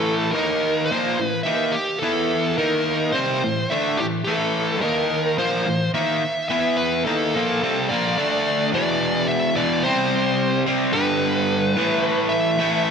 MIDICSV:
0, 0, Header, 1, 3, 480
1, 0, Start_track
1, 0, Key_signature, 0, "minor"
1, 0, Tempo, 559701
1, 1737, Time_signature, 4, 2, 24, 8
1, 6532, Tempo, 554529
1, 11111, End_track
2, 0, Start_track
2, 0, Title_t, "Lead electric guitar"
2, 0, Program_c, 0, 29
2, 0, Note_on_c, 0, 69, 91
2, 267, Note_off_c, 0, 69, 0
2, 270, Note_on_c, 0, 70, 86
2, 731, Note_off_c, 0, 70, 0
2, 734, Note_on_c, 0, 72, 97
2, 1077, Note_off_c, 0, 72, 0
2, 1077, Note_on_c, 0, 71, 97
2, 1201, Note_off_c, 0, 71, 0
2, 1228, Note_on_c, 0, 76, 87
2, 1472, Note_on_c, 0, 67, 74
2, 1490, Note_off_c, 0, 76, 0
2, 1707, Note_off_c, 0, 67, 0
2, 1708, Note_on_c, 0, 69, 92
2, 2207, Note_off_c, 0, 69, 0
2, 2210, Note_on_c, 0, 70, 80
2, 2675, Note_off_c, 0, 70, 0
2, 2678, Note_on_c, 0, 72, 80
2, 3173, Note_on_c, 0, 76, 91
2, 3183, Note_off_c, 0, 72, 0
2, 3408, Note_on_c, 0, 67, 82
2, 3423, Note_off_c, 0, 76, 0
2, 3474, Note_off_c, 0, 67, 0
2, 3641, Note_on_c, 0, 69, 85
2, 4124, Note_off_c, 0, 69, 0
2, 4128, Note_on_c, 0, 70, 74
2, 4612, Note_off_c, 0, 70, 0
2, 4616, Note_on_c, 0, 72, 88
2, 5063, Note_off_c, 0, 72, 0
2, 5099, Note_on_c, 0, 76, 88
2, 5551, Note_off_c, 0, 76, 0
2, 5562, Note_on_c, 0, 76, 86
2, 5791, Note_off_c, 0, 76, 0
2, 5804, Note_on_c, 0, 71, 82
2, 6032, Note_off_c, 0, 71, 0
2, 6043, Note_on_c, 0, 69, 78
2, 6769, Note_on_c, 0, 74, 92
2, 6974, Note_off_c, 0, 69, 0
2, 7459, Note_off_c, 0, 74, 0
2, 7512, Note_on_c, 0, 74, 100
2, 7971, Note_off_c, 0, 74, 0
2, 7974, Note_on_c, 0, 76, 104
2, 8199, Note_off_c, 0, 76, 0
2, 8216, Note_on_c, 0, 74, 84
2, 8440, Note_off_c, 0, 74, 0
2, 8453, Note_on_c, 0, 72, 82
2, 9140, Note_off_c, 0, 72, 0
2, 9398, Note_on_c, 0, 71, 92
2, 10570, Note_off_c, 0, 71, 0
2, 10578, Note_on_c, 0, 76, 104
2, 11111, Note_off_c, 0, 76, 0
2, 11111, End_track
3, 0, Start_track
3, 0, Title_t, "Overdriven electric guitar"
3, 0, Program_c, 1, 29
3, 0, Note_on_c, 1, 45, 98
3, 0, Note_on_c, 1, 52, 104
3, 0, Note_on_c, 1, 57, 102
3, 284, Note_off_c, 1, 45, 0
3, 287, Note_off_c, 1, 52, 0
3, 290, Note_off_c, 1, 57, 0
3, 293, Note_on_c, 1, 51, 92
3, 296, Note_on_c, 1, 58, 99
3, 302, Note_on_c, 1, 63, 116
3, 767, Note_off_c, 1, 51, 0
3, 769, Note_off_c, 1, 58, 0
3, 772, Note_off_c, 1, 63, 0
3, 782, Note_on_c, 1, 46, 86
3, 786, Note_on_c, 1, 53, 95
3, 790, Note_on_c, 1, 58, 97
3, 1012, Note_off_c, 1, 46, 0
3, 1014, Note_off_c, 1, 53, 0
3, 1016, Note_off_c, 1, 58, 0
3, 1021, Note_on_c, 1, 45, 59
3, 1027, Note_on_c, 1, 52, 66
3, 1211, Note_off_c, 1, 45, 0
3, 1214, Note_off_c, 1, 52, 0
3, 1250, Note_on_c, 1, 51, 75
3, 1256, Note_on_c, 1, 58, 89
3, 1258, Note_on_c, 1, 63, 90
3, 1486, Note_off_c, 1, 51, 0
3, 1489, Note_off_c, 1, 58, 0
3, 1491, Note_off_c, 1, 63, 0
3, 1734, Note_on_c, 1, 52, 87
3, 1739, Note_on_c, 1, 59, 101
3, 1745, Note_on_c, 1, 64, 108
3, 2207, Note_off_c, 1, 52, 0
3, 2211, Note_off_c, 1, 59, 0
3, 2211, Note_on_c, 1, 51, 89
3, 2215, Note_off_c, 1, 64, 0
3, 2218, Note_on_c, 1, 58, 95
3, 2219, Note_on_c, 1, 63, 105
3, 2688, Note_off_c, 1, 51, 0
3, 2691, Note_off_c, 1, 58, 0
3, 2692, Note_off_c, 1, 63, 0
3, 2693, Note_on_c, 1, 48, 92
3, 2701, Note_on_c, 1, 55, 86
3, 2705, Note_on_c, 1, 60, 114
3, 2928, Note_off_c, 1, 48, 0
3, 2932, Note_off_c, 1, 55, 0
3, 2934, Note_off_c, 1, 60, 0
3, 2948, Note_on_c, 1, 45, 67
3, 2949, Note_on_c, 1, 52, 64
3, 3135, Note_off_c, 1, 45, 0
3, 3136, Note_off_c, 1, 52, 0
3, 3184, Note_on_c, 1, 50, 79
3, 3188, Note_on_c, 1, 57, 108
3, 3190, Note_on_c, 1, 62, 91
3, 3414, Note_off_c, 1, 50, 0
3, 3416, Note_off_c, 1, 57, 0
3, 3417, Note_off_c, 1, 62, 0
3, 3431, Note_on_c, 1, 45, 62
3, 3433, Note_on_c, 1, 52, 77
3, 3617, Note_off_c, 1, 45, 0
3, 3618, Note_off_c, 1, 52, 0
3, 3663, Note_on_c, 1, 45, 95
3, 3663, Note_on_c, 1, 52, 104
3, 3667, Note_on_c, 1, 57, 105
3, 4133, Note_off_c, 1, 45, 0
3, 4133, Note_on_c, 1, 51, 83
3, 4135, Note_off_c, 1, 52, 0
3, 4135, Note_on_c, 1, 58, 96
3, 4139, Note_off_c, 1, 57, 0
3, 4139, Note_on_c, 1, 63, 98
3, 4608, Note_off_c, 1, 51, 0
3, 4609, Note_off_c, 1, 58, 0
3, 4611, Note_off_c, 1, 63, 0
3, 4614, Note_on_c, 1, 46, 81
3, 4616, Note_on_c, 1, 53, 102
3, 4623, Note_on_c, 1, 58, 91
3, 4848, Note_off_c, 1, 46, 0
3, 4850, Note_off_c, 1, 53, 0
3, 4853, Note_off_c, 1, 58, 0
3, 4860, Note_on_c, 1, 52, 65
3, 4862, Note_on_c, 1, 45, 64
3, 5051, Note_off_c, 1, 45, 0
3, 5051, Note_off_c, 1, 52, 0
3, 5095, Note_on_c, 1, 51, 87
3, 5098, Note_on_c, 1, 58, 92
3, 5106, Note_on_c, 1, 63, 83
3, 5329, Note_off_c, 1, 51, 0
3, 5330, Note_off_c, 1, 58, 0
3, 5334, Note_off_c, 1, 63, 0
3, 5576, Note_on_c, 1, 52, 100
3, 5580, Note_on_c, 1, 59, 105
3, 5585, Note_on_c, 1, 64, 97
3, 6047, Note_off_c, 1, 52, 0
3, 6050, Note_off_c, 1, 59, 0
3, 6052, Note_off_c, 1, 64, 0
3, 6059, Note_on_c, 1, 51, 85
3, 6062, Note_on_c, 1, 58, 101
3, 6065, Note_on_c, 1, 63, 97
3, 6289, Note_off_c, 1, 51, 0
3, 6290, Note_off_c, 1, 58, 0
3, 6292, Note_off_c, 1, 63, 0
3, 6303, Note_on_c, 1, 46, 93
3, 6310, Note_on_c, 1, 53, 90
3, 6314, Note_on_c, 1, 58, 89
3, 6531, Note_off_c, 1, 46, 0
3, 6534, Note_off_c, 1, 53, 0
3, 6536, Note_off_c, 1, 58, 0
3, 6541, Note_on_c, 1, 48, 94
3, 6548, Note_on_c, 1, 55, 104
3, 6549, Note_on_c, 1, 60, 95
3, 6771, Note_off_c, 1, 48, 0
3, 6774, Note_off_c, 1, 55, 0
3, 6775, Note_off_c, 1, 60, 0
3, 6785, Note_on_c, 1, 46, 84
3, 6786, Note_on_c, 1, 53, 96
3, 6792, Note_on_c, 1, 58, 91
3, 7013, Note_off_c, 1, 46, 0
3, 7014, Note_off_c, 1, 53, 0
3, 7016, Note_on_c, 1, 50, 86
3, 7017, Note_off_c, 1, 58, 0
3, 7018, Note_on_c, 1, 57, 101
3, 7027, Note_on_c, 1, 62, 96
3, 7487, Note_on_c, 1, 40, 102
3, 7490, Note_off_c, 1, 50, 0
3, 7491, Note_off_c, 1, 57, 0
3, 7495, Note_off_c, 1, 62, 0
3, 7500, Note_on_c, 1, 47, 105
3, 7511, Note_on_c, 1, 52, 92
3, 8196, Note_off_c, 1, 52, 0
3, 8198, Note_off_c, 1, 40, 0
3, 8205, Note_off_c, 1, 47, 0
3, 8207, Note_on_c, 1, 52, 86
3, 8224, Note_on_c, 1, 47, 87
3, 8234, Note_on_c, 1, 40, 76
3, 8438, Note_off_c, 1, 52, 0
3, 8446, Note_off_c, 1, 47, 0
3, 8451, Note_off_c, 1, 40, 0
3, 8452, Note_on_c, 1, 48, 87
3, 8466, Note_on_c, 1, 55, 105
3, 8476, Note_on_c, 1, 60, 105
3, 9158, Note_off_c, 1, 60, 0
3, 9160, Note_off_c, 1, 48, 0
3, 9167, Note_off_c, 1, 55, 0
3, 9168, Note_on_c, 1, 60, 83
3, 9184, Note_on_c, 1, 55, 85
3, 9194, Note_on_c, 1, 48, 80
3, 9398, Note_off_c, 1, 60, 0
3, 9400, Note_on_c, 1, 43, 92
3, 9406, Note_off_c, 1, 55, 0
3, 9409, Note_off_c, 1, 48, 0
3, 9412, Note_on_c, 1, 50, 102
3, 9423, Note_on_c, 1, 55, 106
3, 10112, Note_off_c, 1, 43, 0
3, 10113, Note_off_c, 1, 50, 0
3, 10117, Note_on_c, 1, 45, 96
3, 10124, Note_off_c, 1, 55, 0
3, 10128, Note_on_c, 1, 52, 93
3, 10139, Note_on_c, 1, 57, 90
3, 10823, Note_off_c, 1, 45, 0
3, 10833, Note_on_c, 1, 45, 77
3, 10835, Note_off_c, 1, 52, 0
3, 10841, Note_off_c, 1, 57, 0
3, 10852, Note_on_c, 1, 52, 89
3, 10858, Note_on_c, 1, 57, 96
3, 11111, Note_off_c, 1, 45, 0
3, 11111, Note_off_c, 1, 52, 0
3, 11111, Note_off_c, 1, 57, 0
3, 11111, End_track
0, 0, End_of_file